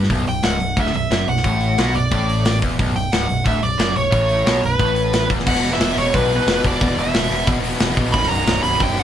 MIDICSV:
0, 0, Header, 1, 5, 480
1, 0, Start_track
1, 0, Key_signature, 2, "minor"
1, 0, Tempo, 335196
1, 139, Time_signature, 4, 2, 24, 8
1, 12931, End_track
2, 0, Start_track
2, 0, Title_t, "Lead electric guitar"
2, 0, Program_c, 0, 29
2, 408, Note_on_c, 0, 79, 92
2, 632, Note_off_c, 0, 79, 0
2, 638, Note_on_c, 0, 78, 89
2, 1125, Note_off_c, 0, 78, 0
2, 1151, Note_on_c, 0, 76, 97
2, 1358, Note_off_c, 0, 76, 0
2, 1375, Note_on_c, 0, 76, 92
2, 1842, Note_off_c, 0, 76, 0
2, 1848, Note_on_c, 0, 78, 90
2, 2792, Note_on_c, 0, 74, 73
2, 2827, Note_off_c, 0, 78, 0
2, 3693, Note_off_c, 0, 74, 0
2, 4237, Note_on_c, 0, 79, 105
2, 4469, Note_off_c, 0, 79, 0
2, 4469, Note_on_c, 0, 78, 109
2, 4961, Note_off_c, 0, 78, 0
2, 4966, Note_on_c, 0, 76, 104
2, 5198, Note_on_c, 0, 74, 98
2, 5205, Note_off_c, 0, 76, 0
2, 5675, Note_off_c, 0, 74, 0
2, 5680, Note_on_c, 0, 73, 98
2, 6660, Note_off_c, 0, 73, 0
2, 6665, Note_on_c, 0, 71, 78
2, 7550, Note_off_c, 0, 71, 0
2, 7838, Note_on_c, 0, 78, 123
2, 8204, Note_off_c, 0, 78, 0
2, 8211, Note_on_c, 0, 76, 98
2, 8562, Note_on_c, 0, 73, 96
2, 8570, Note_off_c, 0, 76, 0
2, 8790, Note_off_c, 0, 73, 0
2, 8790, Note_on_c, 0, 71, 91
2, 9528, Note_off_c, 0, 71, 0
2, 9550, Note_on_c, 0, 74, 97
2, 10020, Note_off_c, 0, 74, 0
2, 10032, Note_on_c, 0, 76, 100
2, 10678, Note_off_c, 0, 76, 0
2, 11638, Note_on_c, 0, 83, 127
2, 11855, Note_off_c, 0, 83, 0
2, 11861, Note_on_c, 0, 82, 108
2, 12349, Note_off_c, 0, 82, 0
2, 12355, Note_on_c, 0, 83, 103
2, 12613, Note_off_c, 0, 83, 0
2, 12632, Note_on_c, 0, 79, 101
2, 12881, Note_off_c, 0, 79, 0
2, 12881, Note_on_c, 0, 78, 102
2, 12931, Note_off_c, 0, 78, 0
2, 12931, End_track
3, 0, Start_track
3, 0, Title_t, "Distorted electric guitar"
3, 0, Program_c, 1, 30
3, 140, Note_on_c, 1, 35, 105
3, 366, Note_off_c, 1, 35, 0
3, 383, Note_on_c, 1, 35, 71
3, 574, Note_off_c, 1, 35, 0
3, 612, Note_on_c, 1, 37, 91
3, 850, Note_off_c, 1, 37, 0
3, 857, Note_on_c, 1, 35, 70
3, 1052, Note_off_c, 1, 35, 0
3, 1095, Note_on_c, 1, 38, 111
3, 1332, Note_off_c, 1, 38, 0
3, 1340, Note_on_c, 1, 35, 68
3, 1534, Note_off_c, 1, 35, 0
3, 1582, Note_on_c, 1, 42, 98
3, 1816, Note_off_c, 1, 42, 0
3, 1837, Note_on_c, 1, 35, 69
3, 2023, Note_off_c, 1, 35, 0
3, 2062, Note_on_c, 1, 45, 97
3, 2537, Note_off_c, 1, 45, 0
3, 2552, Note_on_c, 1, 47, 95
3, 2782, Note_off_c, 1, 47, 0
3, 2790, Note_on_c, 1, 35, 78
3, 2981, Note_off_c, 1, 35, 0
3, 3024, Note_on_c, 1, 45, 97
3, 3739, Note_off_c, 1, 45, 0
3, 3746, Note_on_c, 1, 40, 104
3, 3980, Note_off_c, 1, 40, 0
3, 3997, Note_on_c, 1, 35, 103
3, 4219, Note_off_c, 1, 35, 0
3, 4236, Note_on_c, 1, 35, 67
3, 4425, Note_off_c, 1, 35, 0
3, 4493, Note_on_c, 1, 37, 104
3, 4710, Note_off_c, 1, 37, 0
3, 4716, Note_on_c, 1, 35, 70
3, 4905, Note_off_c, 1, 35, 0
3, 4934, Note_on_c, 1, 38, 101
3, 5175, Note_off_c, 1, 38, 0
3, 5190, Note_on_c, 1, 35, 69
3, 5382, Note_off_c, 1, 35, 0
3, 5411, Note_on_c, 1, 42, 100
3, 5653, Note_off_c, 1, 42, 0
3, 5672, Note_on_c, 1, 35, 74
3, 5882, Note_off_c, 1, 35, 0
3, 5882, Note_on_c, 1, 45, 102
3, 6369, Note_off_c, 1, 45, 0
3, 6370, Note_on_c, 1, 47, 106
3, 6613, Note_off_c, 1, 47, 0
3, 6618, Note_on_c, 1, 35, 65
3, 6816, Note_off_c, 1, 35, 0
3, 6867, Note_on_c, 1, 45, 99
3, 7580, Note_off_c, 1, 45, 0
3, 7586, Note_on_c, 1, 40, 97
3, 7806, Note_off_c, 1, 40, 0
3, 7823, Note_on_c, 1, 40, 79
3, 7829, Note_on_c, 1, 47, 81
3, 7928, Note_off_c, 1, 40, 0
3, 7934, Note_on_c, 1, 40, 62
3, 7938, Note_off_c, 1, 47, 0
3, 7944, Note_on_c, 1, 47, 65
3, 8039, Note_off_c, 1, 40, 0
3, 8039, Note_off_c, 1, 47, 0
3, 8044, Note_on_c, 1, 40, 69
3, 8045, Note_on_c, 1, 47, 77
3, 8157, Note_off_c, 1, 40, 0
3, 8157, Note_off_c, 1, 47, 0
3, 8164, Note_on_c, 1, 47, 66
3, 8171, Note_on_c, 1, 40, 60
3, 8261, Note_off_c, 1, 40, 0
3, 8267, Note_on_c, 1, 40, 75
3, 8276, Note_off_c, 1, 47, 0
3, 8284, Note_on_c, 1, 47, 81
3, 8366, Note_off_c, 1, 40, 0
3, 8372, Note_on_c, 1, 40, 68
3, 8383, Note_off_c, 1, 47, 0
3, 8389, Note_on_c, 1, 47, 63
3, 8485, Note_off_c, 1, 40, 0
3, 8491, Note_off_c, 1, 47, 0
3, 8492, Note_on_c, 1, 40, 80
3, 8497, Note_on_c, 1, 47, 82
3, 8605, Note_off_c, 1, 40, 0
3, 8609, Note_off_c, 1, 47, 0
3, 8614, Note_on_c, 1, 47, 73
3, 8622, Note_on_c, 1, 40, 68
3, 8712, Note_off_c, 1, 40, 0
3, 8718, Note_on_c, 1, 40, 78
3, 8724, Note_off_c, 1, 47, 0
3, 8730, Note_on_c, 1, 47, 77
3, 8831, Note_off_c, 1, 40, 0
3, 8835, Note_off_c, 1, 47, 0
3, 8840, Note_on_c, 1, 47, 72
3, 8843, Note_on_c, 1, 40, 70
3, 8943, Note_off_c, 1, 40, 0
3, 8946, Note_off_c, 1, 47, 0
3, 8949, Note_on_c, 1, 40, 80
3, 8952, Note_on_c, 1, 47, 79
3, 9060, Note_off_c, 1, 40, 0
3, 9065, Note_off_c, 1, 47, 0
3, 9066, Note_on_c, 1, 40, 68
3, 9076, Note_on_c, 1, 47, 68
3, 9171, Note_off_c, 1, 47, 0
3, 9177, Note_on_c, 1, 47, 81
3, 9179, Note_off_c, 1, 40, 0
3, 9186, Note_on_c, 1, 40, 79
3, 9278, Note_off_c, 1, 40, 0
3, 9284, Note_on_c, 1, 40, 67
3, 9287, Note_off_c, 1, 47, 0
3, 9293, Note_on_c, 1, 47, 67
3, 9396, Note_off_c, 1, 40, 0
3, 9396, Note_off_c, 1, 47, 0
3, 9402, Note_on_c, 1, 47, 75
3, 9404, Note_on_c, 1, 40, 73
3, 9506, Note_off_c, 1, 40, 0
3, 9512, Note_on_c, 1, 40, 60
3, 9515, Note_off_c, 1, 47, 0
3, 9526, Note_on_c, 1, 47, 65
3, 9613, Note_off_c, 1, 40, 0
3, 9619, Note_on_c, 1, 40, 64
3, 9628, Note_off_c, 1, 47, 0
3, 9634, Note_on_c, 1, 47, 67
3, 9732, Note_off_c, 1, 40, 0
3, 9746, Note_off_c, 1, 47, 0
3, 9759, Note_on_c, 1, 40, 84
3, 9765, Note_on_c, 1, 47, 92
3, 9854, Note_off_c, 1, 40, 0
3, 9860, Note_on_c, 1, 40, 55
3, 9863, Note_off_c, 1, 47, 0
3, 9868, Note_on_c, 1, 47, 61
3, 9970, Note_off_c, 1, 40, 0
3, 9976, Note_on_c, 1, 40, 65
3, 9980, Note_off_c, 1, 47, 0
3, 9991, Note_on_c, 1, 47, 70
3, 10087, Note_off_c, 1, 40, 0
3, 10092, Note_off_c, 1, 47, 0
3, 10093, Note_on_c, 1, 40, 63
3, 10098, Note_on_c, 1, 47, 68
3, 10189, Note_off_c, 1, 40, 0
3, 10191, Note_off_c, 1, 47, 0
3, 10195, Note_on_c, 1, 40, 73
3, 10197, Note_on_c, 1, 47, 73
3, 10307, Note_off_c, 1, 40, 0
3, 10309, Note_off_c, 1, 47, 0
3, 10314, Note_on_c, 1, 40, 63
3, 10338, Note_on_c, 1, 47, 65
3, 10425, Note_off_c, 1, 40, 0
3, 10431, Note_on_c, 1, 40, 75
3, 10434, Note_off_c, 1, 47, 0
3, 10440, Note_on_c, 1, 47, 76
3, 10536, Note_off_c, 1, 40, 0
3, 10542, Note_on_c, 1, 40, 66
3, 10546, Note_off_c, 1, 47, 0
3, 10551, Note_on_c, 1, 47, 67
3, 10654, Note_off_c, 1, 40, 0
3, 10663, Note_off_c, 1, 47, 0
3, 10669, Note_on_c, 1, 47, 81
3, 10670, Note_on_c, 1, 40, 75
3, 10772, Note_off_c, 1, 47, 0
3, 10774, Note_off_c, 1, 40, 0
3, 10778, Note_on_c, 1, 47, 67
3, 10780, Note_on_c, 1, 40, 66
3, 10859, Note_off_c, 1, 40, 0
3, 10864, Note_on_c, 1, 40, 76
3, 10875, Note_off_c, 1, 47, 0
3, 10881, Note_on_c, 1, 47, 80
3, 10977, Note_off_c, 1, 40, 0
3, 10993, Note_off_c, 1, 47, 0
3, 10996, Note_on_c, 1, 40, 68
3, 11003, Note_on_c, 1, 47, 72
3, 11085, Note_off_c, 1, 47, 0
3, 11091, Note_on_c, 1, 47, 82
3, 11100, Note_off_c, 1, 40, 0
3, 11106, Note_on_c, 1, 40, 76
3, 11203, Note_off_c, 1, 47, 0
3, 11215, Note_on_c, 1, 47, 62
3, 11218, Note_off_c, 1, 40, 0
3, 11234, Note_on_c, 1, 40, 60
3, 11323, Note_off_c, 1, 40, 0
3, 11327, Note_off_c, 1, 47, 0
3, 11329, Note_on_c, 1, 40, 73
3, 11339, Note_on_c, 1, 47, 73
3, 11434, Note_off_c, 1, 47, 0
3, 11440, Note_on_c, 1, 47, 61
3, 11441, Note_off_c, 1, 40, 0
3, 11447, Note_on_c, 1, 40, 61
3, 11548, Note_off_c, 1, 40, 0
3, 11552, Note_off_c, 1, 47, 0
3, 11554, Note_on_c, 1, 40, 69
3, 11567, Note_on_c, 1, 47, 75
3, 11655, Note_off_c, 1, 40, 0
3, 11661, Note_on_c, 1, 35, 84
3, 11679, Note_off_c, 1, 47, 0
3, 11684, Note_on_c, 1, 42, 98
3, 11752, Note_off_c, 1, 35, 0
3, 11758, Note_on_c, 1, 35, 53
3, 11785, Note_off_c, 1, 42, 0
3, 11791, Note_on_c, 1, 42, 71
3, 11868, Note_off_c, 1, 35, 0
3, 11875, Note_on_c, 1, 35, 64
3, 11899, Note_off_c, 1, 42, 0
3, 11905, Note_on_c, 1, 42, 78
3, 11985, Note_off_c, 1, 35, 0
3, 11990, Note_on_c, 1, 35, 59
3, 12004, Note_off_c, 1, 42, 0
3, 12010, Note_on_c, 1, 42, 76
3, 12092, Note_off_c, 1, 35, 0
3, 12098, Note_on_c, 1, 35, 72
3, 12109, Note_off_c, 1, 42, 0
3, 12114, Note_on_c, 1, 42, 83
3, 12193, Note_off_c, 1, 35, 0
3, 12199, Note_on_c, 1, 35, 61
3, 12224, Note_off_c, 1, 42, 0
3, 12231, Note_on_c, 1, 42, 78
3, 12309, Note_off_c, 1, 35, 0
3, 12325, Note_on_c, 1, 35, 68
3, 12335, Note_off_c, 1, 42, 0
3, 12340, Note_on_c, 1, 42, 90
3, 12427, Note_off_c, 1, 35, 0
3, 12432, Note_on_c, 1, 35, 66
3, 12441, Note_off_c, 1, 42, 0
3, 12447, Note_on_c, 1, 42, 75
3, 12531, Note_off_c, 1, 35, 0
3, 12537, Note_on_c, 1, 35, 72
3, 12556, Note_off_c, 1, 42, 0
3, 12569, Note_on_c, 1, 42, 89
3, 12644, Note_off_c, 1, 35, 0
3, 12650, Note_on_c, 1, 35, 66
3, 12665, Note_off_c, 1, 42, 0
3, 12671, Note_on_c, 1, 42, 75
3, 12750, Note_off_c, 1, 35, 0
3, 12755, Note_on_c, 1, 35, 76
3, 12776, Note_off_c, 1, 42, 0
3, 12782, Note_on_c, 1, 42, 85
3, 12863, Note_off_c, 1, 35, 0
3, 12869, Note_on_c, 1, 35, 58
3, 12888, Note_off_c, 1, 42, 0
3, 12931, Note_off_c, 1, 35, 0
3, 12931, End_track
4, 0, Start_track
4, 0, Title_t, "Picked electric bass"
4, 0, Program_c, 2, 34
4, 146, Note_on_c, 2, 23, 92
4, 367, Note_off_c, 2, 23, 0
4, 394, Note_on_c, 2, 23, 74
4, 611, Note_off_c, 2, 23, 0
4, 633, Note_on_c, 2, 25, 94
4, 851, Note_off_c, 2, 25, 0
4, 883, Note_on_c, 2, 23, 77
4, 1094, Note_off_c, 2, 23, 0
4, 1102, Note_on_c, 2, 26, 88
4, 1326, Note_off_c, 2, 26, 0
4, 1353, Note_on_c, 2, 23, 69
4, 1572, Note_off_c, 2, 23, 0
4, 1585, Note_on_c, 2, 30, 92
4, 1808, Note_off_c, 2, 30, 0
4, 1824, Note_on_c, 2, 23, 81
4, 2048, Note_off_c, 2, 23, 0
4, 2066, Note_on_c, 2, 33, 92
4, 2513, Note_off_c, 2, 33, 0
4, 2557, Note_on_c, 2, 35, 94
4, 2775, Note_off_c, 2, 35, 0
4, 2790, Note_on_c, 2, 23, 82
4, 3012, Note_off_c, 2, 23, 0
4, 3030, Note_on_c, 2, 33, 84
4, 3699, Note_off_c, 2, 33, 0
4, 3759, Note_on_c, 2, 28, 89
4, 3977, Note_off_c, 2, 28, 0
4, 4002, Note_on_c, 2, 23, 90
4, 4219, Note_off_c, 2, 23, 0
4, 4231, Note_on_c, 2, 23, 77
4, 4453, Note_off_c, 2, 23, 0
4, 4473, Note_on_c, 2, 25, 89
4, 4695, Note_off_c, 2, 25, 0
4, 4711, Note_on_c, 2, 23, 78
4, 4934, Note_off_c, 2, 23, 0
4, 4947, Note_on_c, 2, 26, 98
4, 5172, Note_off_c, 2, 26, 0
4, 5200, Note_on_c, 2, 23, 78
4, 5419, Note_off_c, 2, 23, 0
4, 5431, Note_on_c, 2, 30, 93
4, 5654, Note_off_c, 2, 30, 0
4, 5675, Note_on_c, 2, 23, 71
4, 5896, Note_off_c, 2, 23, 0
4, 5903, Note_on_c, 2, 33, 93
4, 6352, Note_off_c, 2, 33, 0
4, 6384, Note_on_c, 2, 35, 92
4, 6610, Note_off_c, 2, 35, 0
4, 6631, Note_on_c, 2, 23, 78
4, 6854, Note_off_c, 2, 23, 0
4, 6864, Note_on_c, 2, 33, 92
4, 7536, Note_off_c, 2, 33, 0
4, 7595, Note_on_c, 2, 28, 80
4, 7815, Note_off_c, 2, 28, 0
4, 7831, Note_on_c, 2, 28, 90
4, 8013, Note_off_c, 2, 28, 0
4, 8053, Note_on_c, 2, 28, 92
4, 8241, Note_off_c, 2, 28, 0
4, 8303, Note_on_c, 2, 28, 100
4, 8487, Note_off_c, 2, 28, 0
4, 8548, Note_on_c, 2, 28, 95
4, 8730, Note_off_c, 2, 28, 0
4, 8797, Note_on_c, 2, 35, 98
4, 9157, Note_off_c, 2, 35, 0
4, 9261, Note_on_c, 2, 28, 90
4, 9445, Note_off_c, 2, 28, 0
4, 9521, Note_on_c, 2, 28, 96
4, 9697, Note_off_c, 2, 28, 0
4, 9752, Note_on_c, 2, 28, 101
4, 9931, Note_off_c, 2, 28, 0
4, 9988, Note_on_c, 2, 28, 91
4, 10168, Note_off_c, 2, 28, 0
4, 10227, Note_on_c, 2, 28, 101
4, 10408, Note_off_c, 2, 28, 0
4, 10472, Note_on_c, 2, 28, 90
4, 10651, Note_off_c, 2, 28, 0
4, 10710, Note_on_c, 2, 28, 97
4, 11071, Note_off_c, 2, 28, 0
4, 11180, Note_on_c, 2, 28, 101
4, 11362, Note_off_c, 2, 28, 0
4, 11422, Note_on_c, 2, 34, 89
4, 11603, Note_off_c, 2, 34, 0
4, 11659, Note_on_c, 2, 23, 103
4, 11841, Note_off_c, 2, 23, 0
4, 11892, Note_on_c, 2, 23, 89
4, 12077, Note_off_c, 2, 23, 0
4, 12126, Note_on_c, 2, 23, 99
4, 12312, Note_off_c, 2, 23, 0
4, 12362, Note_on_c, 2, 23, 103
4, 12550, Note_off_c, 2, 23, 0
4, 12605, Note_on_c, 2, 30, 99
4, 12931, Note_off_c, 2, 30, 0
4, 12931, End_track
5, 0, Start_track
5, 0, Title_t, "Drums"
5, 46, Note_on_c, 9, 38, 34
5, 143, Note_on_c, 9, 36, 93
5, 145, Note_on_c, 9, 46, 70
5, 189, Note_off_c, 9, 38, 0
5, 286, Note_off_c, 9, 36, 0
5, 288, Note_off_c, 9, 46, 0
5, 389, Note_on_c, 9, 46, 49
5, 532, Note_off_c, 9, 46, 0
5, 616, Note_on_c, 9, 46, 72
5, 625, Note_on_c, 9, 38, 108
5, 759, Note_off_c, 9, 46, 0
5, 768, Note_off_c, 9, 38, 0
5, 861, Note_on_c, 9, 46, 48
5, 1004, Note_off_c, 9, 46, 0
5, 1100, Note_on_c, 9, 46, 62
5, 1101, Note_on_c, 9, 36, 97
5, 1234, Note_on_c, 9, 38, 31
5, 1243, Note_off_c, 9, 46, 0
5, 1244, Note_off_c, 9, 36, 0
5, 1343, Note_on_c, 9, 46, 53
5, 1377, Note_off_c, 9, 38, 0
5, 1486, Note_off_c, 9, 46, 0
5, 1593, Note_on_c, 9, 46, 71
5, 1601, Note_on_c, 9, 38, 112
5, 1736, Note_off_c, 9, 46, 0
5, 1744, Note_off_c, 9, 38, 0
5, 1828, Note_on_c, 9, 46, 56
5, 1958, Note_on_c, 9, 38, 33
5, 1971, Note_off_c, 9, 46, 0
5, 2065, Note_on_c, 9, 36, 103
5, 2069, Note_on_c, 9, 46, 65
5, 2102, Note_off_c, 9, 38, 0
5, 2209, Note_off_c, 9, 36, 0
5, 2212, Note_off_c, 9, 46, 0
5, 2301, Note_on_c, 9, 46, 47
5, 2444, Note_off_c, 9, 46, 0
5, 2549, Note_on_c, 9, 46, 74
5, 2558, Note_on_c, 9, 38, 101
5, 2692, Note_off_c, 9, 46, 0
5, 2701, Note_off_c, 9, 38, 0
5, 2784, Note_on_c, 9, 46, 55
5, 2927, Note_off_c, 9, 46, 0
5, 3025, Note_on_c, 9, 46, 70
5, 3031, Note_on_c, 9, 36, 92
5, 3168, Note_off_c, 9, 46, 0
5, 3174, Note_off_c, 9, 36, 0
5, 3284, Note_on_c, 9, 46, 57
5, 3427, Note_off_c, 9, 46, 0
5, 3512, Note_on_c, 9, 46, 85
5, 3521, Note_on_c, 9, 38, 114
5, 3655, Note_off_c, 9, 46, 0
5, 3664, Note_off_c, 9, 38, 0
5, 3756, Note_on_c, 9, 36, 95
5, 3760, Note_on_c, 9, 46, 59
5, 3899, Note_off_c, 9, 36, 0
5, 3903, Note_off_c, 9, 46, 0
5, 3999, Note_on_c, 9, 36, 97
5, 4004, Note_on_c, 9, 46, 76
5, 4142, Note_off_c, 9, 36, 0
5, 4147, Note_off_c, 9, 46, 0
5, 4239, Note_on_c, 9, 46, 52
5, 4382, Note_off_c, 9, 46, 0
5, 4475, Note_on_c, 9, 46, 73
5, 4483, Note_on_c, 9, 38, 112
5, 4618, Note_off_c, 9, 46, 0
5, 4626, Note_off_c, 9, 38, 0
5, 4712, Note_on_c, 9, 46, 53
5, 4855, Note_off_c, 9, 46, 0
5, 4950, Note_on_c, 9, 36, 92
5, 4950, Note_on_c, 9, 46, 65
5, 5093, Note_off_c, 9, 46, 0
5, 5094, Note_off_c, 9, 36, 0
5, 5192, Note_on_c, 9, 46, 50
5, 5335, Note_off_c, 9, 46, 0
5, 5431, Note_on_c, 9, 46, 76
5, 5439, Note_on_c, 9, 38, 109
5, 5574, Note_off_c, 9, 46, 0
5, 5583, Note_off_c, 9, 38, 0
5, 5671, Note_on_c, 9, 46, 54
5, 5814, Note_off_c, 9, 46, 0
5, 5906, Note_on_c, 9, 36, 92
5, 5911, Note_on_c, 9, 46, 68
5, 6049, Note_off_c, 9, 36, 0
5, 6054, Note_off_c, 9, 46, 0
5, 6146, Note_on_c, 9, 46, 53
5, 6289, Note_off_c, 9, 46, 0
5, 6394, Note_on_c, 9, 46, 76
5, 6403, Note_on_c, 9, 38, 117
5, 6537, Note_off_c, 9, 46, 0
5, 6546, Note_off_c, 9, 38, 0
5, 6635, Note_on_c, 9, 46, 53
5, 6779, Note_off_c, 9, 46, 0
5, 6866, Note_on_c, 9, 36, 98
5, 6867, Note_on_c, 9, 46, 71
5, 7009, Note_off_c, 9, 36, 0
5, 7011, Note_off_c, 9, 46, 0
5, 7105, Note_on_c, 9, 46, 56
5, 7248, Note_off_c, 9, 46, 0
5, 7349, Note_on_c, 9, 46, 84
5, 7358, Note_on_c, 9, 38, 113
5, 7492, Note_off_c, 9, 46, 0
5, 7501, Note_off_c, 9, 38, 0
5, 7590, Note_on_c, 9, 36, 104
5, 7592, Note_on_c, 9, 46, 58
5, 7723, Note_on_c, 9, 38, 34
5, 7733, Note_off_c, 9, 36, 0
5, 7735, Note_off_c, 9, 46, 0
5, 7829, Note_on_c, 9, 36, 100
5, 7830, Note_on_c, 9, 49, 114
5, 7866, Note_off_c, 9, 38, 0
5, 7949, Note_on_c, 9, 38, 34
5, 7972, Note_off_c, 9, 36, 0
5, 7974, Note_off_c, 9, 49, 0
5, 8066, Note_on_c, 9, 46, 59
5, 8093, Note_off_c, 9, 38, 0
5, 8207, Note_on_c, 9, 38, 33
5, 8210, Note_off_c, 9, 46, 0
5, 8310, Note_on_c, 9, 46, 89
5, 8319, Note_off_c, 9, 38, 0
5, 8319, Note_on_c, 9, 38, 108
5, 8454, Note_off_c, 9, 46, 0
5, 8462, Note_off_c, 9, 38, 0
5, 8556, Note_on_c, 9, 46, 66
5, 8699, Note_off_c, 9, 46, 0
5, 8791, Note_on_c, 9, 46, 76
5, 8793, Note_on_c, 9, 36, 112
5, 8934, Note_off_c, 9, 46, 0
5, 8936, Note_off_c, 9, 36, 0
5, 9036, Note_on_c, 9, 46, 56
5, 9179, Note_off_c, 9, 46, 0
5, 9270, Note_on_c, 9, 46, 79
5, 9278, Note_on_c, 9, 38, 120
5, 9413, Note_off_c, 9, 46, 0
5, 9421, Note_off_c, 9, 38, 0
5, 9515, Note_on_c, 9, 36, 83
5, 9521, Note_on_c, 9, 46, 63
5, 9659, Note_off_c, 9, 36, 0
5, 9665, Note_off_c, 9, 46, 0
5, 9750, Note_on_c, 9, 46, 76
5, 9755, Note_on_c, 9, 36, 116
5, 9893, Note_off_c, 9, 46, 0
5, 9898, Note_off_c, 9, 36, 0
5, 10001, Note_on_c, 9, 46, 56
5, 10144, Note_off_c, 9, 46, 0
5, 10227, Note_on_c, 9, 46, 93
5, 10235, Note_on_c, 9, 38, 114
5, 10370, Note_off_c, 9, 46, 0
5, 10379, Note_off_c, 9, 38, 0
5, 10463, Note_on_c, 9, 46, 63
5, 10607, Note_off_c, 9, 46, 0
5, 10692, Note_on_c, 9, 46, 79
5, 10702, Note_on_c, 9, 36, 112
5, 10836, Note_off_c, 9, 46, 0
5, 10845, Note_off_c, 9, 36, 0
5, 10936, Note_on_c, 9, 46, 66
5, 11080, Note_off_c, 9, 46, 0
5, 11168, Note_on_c, 9, 46, 86
5, 11177, Note_on_c, 9, 38, 118
5, 11311, Note_off_c, 9, 46, 0
5, 11320, Note_off_c, 9, 38, 0
5, 11411, Note_on_c, 9, 46, 70
5, 11415, Note_on_c, 9, 36, 86
5, 11554, Note_off_c, 9, 46, 0
5, 11558, Note_off_c, 9, 36, 0
5, 11653, Note_on_c, 9, 46, 83
5, 11654, Note_on_c, 9, 36, 109
5, 11785, Note_on_c, 9, 38, 36
5, 11796, Note_off_c, 9, 46, 0
5, 11798, Note_off_c, 9, 36, 0
5, 11890, Note_on_c, 9, 46, 62
5, 11928, Note_off_c, 9, 38, 0
5, 12034, Note_off_c, 9, 46, 0
5, 12129, Note_on_c, 9, 46, 90
5, 12138, Note_on_c, 9, 38, 116
5, 12272, Note_off_c, 9, 46, 0
5, 12281, Note_off_c, 9, 38, 0
5, 12365, Note_on_c, 9, 46, 67
5, 12508, Note_off_c, 9, 46, 0
5, 12600, Note_on_c, 9, 46, 84
5, 12606, Note_on_c, 9, 36, 102
5, 12743, Note_off_c, 9, 46, 0
5, 12749, Note_off_c, 9, 36, 0
5, 12846, Note_on_c, 9, 46, 61
5, 12931, Note_off_c, 9, 46, 0
5, 12931, End_track
0, 0, End_of_file